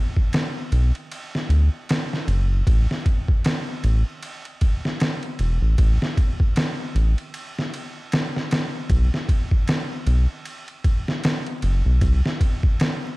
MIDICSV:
0, 0, Header, 1, 3, 480
1, 0, Start_track
1, 0, Tempo, 779221
1, 1642, Time_signature, 4, 2, 24, 8
1, 8112, End_track
2, 0, Start_track
2, 0, Title_t, "Analog synth bass"
2, 0, Program_c, 0, 38
2, 443, Note_on_c, 0, 35, 94
2, 565, Note_off_c, 0, 35, 0
2, 919, Note_on_c, 0, 38, 73
2, 1043, Note_off_c, 0, 38, 0
2, 1401, Note_on_c, 0, 30, 96
2, 1617, Note_off_c, 0, 30, 0
2, 1644, Note_on_c, 0, 33, 93
2, 1766, Note_off_c, 0, 33, 0
2, 2363, Note_on_c, 0, 33, 97
2, 2485, Note_off_c, 0, 33, 0
2, 3323, Note_on_c, 0, 28, 98
2, 3445, Note_off_c, 0, 28, 0
2, 3459, Note_on_c, 0, 33, 85
2, 3548, Note_off_c, 0, 33, 0
2, 3563, Note_on_c, 0, 33, 94
2, 3685, Note_off_c, 0, 33, 0
2, 4282, Note_on_c, 0, 33, 94
2, 4405, Note_off_c, 0, 33, 0
2, 5480, Note_on_c, 0, 35, 98
2, 5604, Note_off_c, 0, 35, 0
2, 6200, Note_on_c, 0, 35, 92
2, 6324, Note_off_c, 0, 35, 0
2, 7163, Note_on_c, 0, 30, 95
2, 7285, Note_off_c, 0, 30, 0
2, 7302, Note_on_c, 0, 35, 88
2, 7390, Note_off_c, 0, 35, 0
2, 7400, Note_on_c, 0, 36, 100
2, 7524, Note_off_c, 0, 36, 0
2, 8112, End_track
3, 0, Start_track
3, 0, Title_t, "Drums"
3, 102, Note_on_c, 9, 36, 85
3, 163, Note_off_c, 9, 36, 0
3, 203, Note_on_c, 9, 51, 85
3, 211, Note_on_c, 9, 38, 110
3, 264, Note_off_c, 9, 51, 0
3, 272, Note_off_c, 9, 38, 0
3, 444, Note_on_c, 9, 51, 64
3, 505, Note_off_c, 9, 51, 0
3, 585, Note_on_c, 9, 51, 40
3, 647, Note_off_c, 9, 51, 0
3, 687, Note_on_c, 9, 51, 81
3, 748, Note_off_c, 9, 51, 0
3, 832, Note_on_c, 9, 38, 45
3, 893, Note_off_c, 9, 38, 0
3, 925, Note_on_c, 9, 51, 61
3, 987, Note_off_c, 9, 51, 0
3, 1166, Note_on_c, 9, 51, 84
3, 1174, Note_on_c, 9, 38, 105
3, 1228, Note_off_c, 9, 51, 0
3, 1236, Note_off_c, 9, 38, 0
3, 1314, Note_on_c, 9, 38, 34
3, 1375, Note_off_c, 9, 38, 0
3, 1404, Note_on_c, 9, 51, 65
3, 1466, Note_off_c, 9, 51, 0
3, 1643, Note_on_c, 9, 36, 101
3, 1645, Note_on_c, 9, 51, 85
3, 1705, Note_off_c, 9, 36, 0
3, 1707, Note_off_c, 9, 51, 0
3, 1792, Note_on_c, 9, 38, 42
3, 1854, Note_off_c, 9, 38, 0
3, 1883, Note_on_c, 9, 36, 89
3, 1884, Note_on_c, 9, 51, 62
3, 1945, Note_off_c, 9, 36, 0
3, 1945, Note_off_c, 9, 51, 0
3, 2023, Note_on_c, 9, 36, 86
3, 2085, Note_off_c, 9, 36, 0
3, 2122, Note_on_c, 9, 51, 85
3, 2130, Note_on_c, 9, 38, 104
3, 2184, Note_off_c, 9, 51, 0
3, 2192, Note_off_c, 9, 38, 0
3, 2364, Note_on_c, 9, 51, 66
3, 2425, Note_off_c, 9, 51, 0
3, 2603, Note_on_c, 9, 51, 79
3, 2664, Note_off_c, 9, 51, 0
3, 2742, Note_on_c, 9, 51, 45
3, 2804, Note_off_c, 9, 51, 0
3, 2840, Note_on_c, 9, 51, 64
3, 2843, Note_on_c, 9, 36, 82
3, 2902, Note_off_c, 9, 51, 0
3, 2904, Note_off_c, 9, 36, 0
3, 2989, Note_on_c, 9, 38, 45
3, 3050, Note_off_c, 9, 38, 0
3, 3081, Note_on_c, 9, 51, 77
3, 3089, Note_on_c, 9, 38, 107
3, 3143, Note_off_c, 9, 51, 0
3, 3151, Note_off_c, 9, 38, 0
3, 3220, Note_on_c, 9, 51, 41
3, 3282, Note_off_c, 9, 51, 0
3, 3320, Note_on_c, 9, 51, 66
3, 3382, Note_off_c, 9, 51, 0
3, 3561, Note_on_c, 9, 51, 85
3, 3562, Note_on_c, 9, 36, 98
3, 3623, Note_off_c, 9, 36, 0
3, 3623, Note_off_c, 9, 51, 0
3, 3709, Note_on_c, 9, 38, 52
3, 3770, Note_off_c, 9, 38, 0
3, 3803, Note_on_c, 9, 36, 89
3, 3804, Note_on_c, 9, 51, 64
3, 3864, Note_off_c, 9, 36, 0
3, 3865, Note_off_c, 9, 51, 0
3, 3941, Note_on_c, 9, 36, 86
3, 4003, Note_off_c, 9, 36, 0
3, 4040, Note_on_c, 9, 51, 86
3, 4048, Note_on_c, 9, 38, 118
3, 4102, Note_off_c, 9, 51, 0
3, 4110, Note_off_c, 9, 38, 0
3, 4286, Note_on_c, 9, 51, 61
3, 4348, Note_off_c, 9, 51, 0
3, 4423, Note_on_c, 9, 51, 44
3, 4485, Note_off_c, 9, 51, 0
3, 4521, Note_on_c, 9, 51, 81
3, 4583, Note_off_c, 9, 51, 0
3, 4673, Note_on_c, 9, 38, 45
3, 4734, Note_off_c, 9, 38, 0
3, 4765, Note_on_c, 9, 51, 66
3, 4827, Note_off_c, 9, 51, 0
3, 5002, Note_on_c, 9, 51, 82
3, 5010, Note_on_c, 9, 38, 115
3, 5064, Note_off_c, 9, 51, 0
3, 5072, Note_off_c, 9, 38, 0
3, 5152, Note_on_c, 9, 38, 35
3, 5214, Note_off_c, 9, 38, 0
3, 5243, Note_on_c, 9, 51, 78
3, 5251, Note_on_c, 9, 38, 106
3, 5305, Note_off_c, 9, 51, 0
3, 5313, Note_off_c, 9, 38, 0
3, 5480, Note_on_c, 9, 51, 84
3, 5481, Note_on_c, 9, 36, 109
3, 5541, Note_off_c, 9, 51, 0
3, 5542, Note_off_c, 9, 36, 0
3, 5630, Note_on_c, 9, 38, 44
3, 5692, Note_off_c, 9, 38, 0
3, 5721, Note_on_c, 9, 36, 88
3, 5723, Note_on_c, 9, 51, 68
3, 5782, Note_off_c, 9, 36, 0
3, 5784, Note_off_c, 9, 51, 0
3, 5860, Note_on_c, 9, 36, 91
3, 5922, Note_off_c, 9, 36, 0
3, 5959, Note_on_c, 9, 51, 86
3, 5967, Note_on_c, 9, 38, 110
3, 6021, Note_off_c, 9, 51, 0
3, 6029, Note_off_c, 9, 38, 0
3, 6200, Note_on_c, 9, 51, 67
3, 6262, Note_off_c, 9, 51, 0
3, 6440, Note_on_c, 9, 51, 76
3, 6502, Note_off_c, 9, 51, 0
3, 6578, Note_on_c, 9, 51, 41
3, 6640, Note_off_c, 9, 51, 0
3, 6680, Note_on_c, 9, 36, 89
3, 6680, Note_on_c, 9, 51, 67
3, 6742, Note_off_c, 9, 36, 0
3, 6742, Note_off_c, 9, 51, 0
3, 6827, Note_on_c, 9, 38, 48
3, 6889, Note_off_c, 9, 38, 0
3, 6921, Note_on_c, 9, 51, 79
3, 6929, Note_on_c, 9, 38, 116
3, 6983, Note_off_c, 9, 51, 0
3, 6991, Note_off_c, 9, 38, 0
3, 7062, Note_on_c, 9, 51, 42
3, 7124, Note_off_c, 9, 51, 0
3, 7160, Note_on_c, 9, 51, 66
3, 7221, Note_off_c, 9, 51, 0
3, 7400, Note_on_c, 9, 51, 84
3, 7401, Note_on_c, 9, 36, 103
3, 7462, Note_off_c, 9, 51, 0
3, 7463, Note_off_c, 9, 36, 0
3, 7550, Note_on_c, 9, 38, 51
3, 7611, Note_off_c, 9, 38, 0
3, 7642, Note_on_c, 9, 36, 86
3, 7644, Note_on_c, 9, 51, 68
3, 7704, Note_off_c, 9, 36, 0
3, 7705, Note_off_c, 9, 51, 0
3, 7782, Note_on_c, 9, 36, 93
3, 7844, Note_off_c, 9, 36, 0
3, 7883, Note_on_c, 9, 51, 82
3, 7891, Note_on_c, 9, 38, 112
3, 7945, Note_off_c, 9, 51, 0
3, 7953, Note_off_c, 9, 38, 0
3, 8112, End_track
0, 0, End_of_file